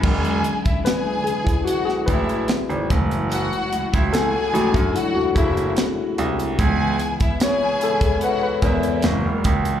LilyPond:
<<
  \new Staff \with { instrumentName = "String section" } { \time 4/4 \key e \mixolydian \tempo 4 = 73 <gis' gis''>8. <e' e''>16 <gis' gis''>4 <fis' fis''>8 <e' e''>8 r4 | <fis' fis''>8. <e' e''>16 <gis' gis''>4 <fis' fis''>8 <e' e''>8 r4 | <gis' gis''>8. <e' e''>16 <gis' gis''>4 <fis' fis''>8 <e' e''>8 r4 | }
  \new Staff \with { instrumentName = "Tine electric piano" } { \time 4/4 \key e \mixolydian r4 b'8 gis'16 e'16 fis'16 gis'16 b'4 r8 | r4 a'8 fis'16 d'16 e'16 fis'16 gis'4 r8 | r4 cis''8 a'16 gis'16 b'16 b'16 ais'4 r8 | }
  \new Staff \with { instrumentName = "Tine electric piano" } { \clef bass \time 4/4 \key e \mixolydian <d fis gis cis'>4. r2 <e gis a>8~ | <e gis a>4 r8 <e gis a>8 r2 | <e gis b>2~ <e gis b>8 <e gis b>8 <e gis ais>4 | }
  \new Staff \with { instrumentName = "String section" } { \time 4/4 \key e \mixolydian <d gis e'>2.~ <d gis e'>8 <fis cis' fis'>8~ | <fis cis' fis'>1 | <cis gis b e'>2. <fis cis' ais'>4 | }
  \new Staff \with { instrumentName = "Grand piano" } { \clef bass \time 4/4 \key e \mixolydian e,,8 r2 a,,8 r16 gis,,16 fis,,8~ | fis,,16 r16 cis,16 cis,8 r16 a,,16 fis,16 r16 fis,,16 fis,,8 r8 c,8 | cis,8 r2 e,8 fis,,16 e,,16 cis,8 | }
  \new DrumStaff \with { instrumentName = "Drums" } \drummode { \time 4/4 <cymc bd>16 hh16 hh16 <hh bd>16 <hh sn>8 hh16 <hh bd>16 hh16 sn16 <hh bd>16 hh16 <hh sn>16 hh16 <hh bd sn>16 hh16 | hh16 hh16 hh16 <hh bd>16 <hh sn>8 hh16 <hh bd>16 hh8 <hh bd>16 hh16 <hh sn>8 hh16 hh16 | <hh bd>8 hh16 <hh bd>16 <hh sn>8 hh16 <hh bd>16 hh8 <hh bd>16 hh16 <hh sn>8 <hh bd>16 hh16 | }
>>